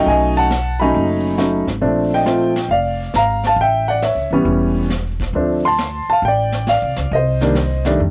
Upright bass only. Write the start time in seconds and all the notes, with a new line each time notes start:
0.06 B1
0.94 F#1
1.67 G#1
1.82 A#1
2.69 F1
3.14 G#1
3.56 A1
4.15 C#2
4.31 G1
4.45 E1
5.33 D2
6.09 muted upright bass stroke
6.22 A1
6.82 C2
6.97 C#2
7.11 C2
8.00 F2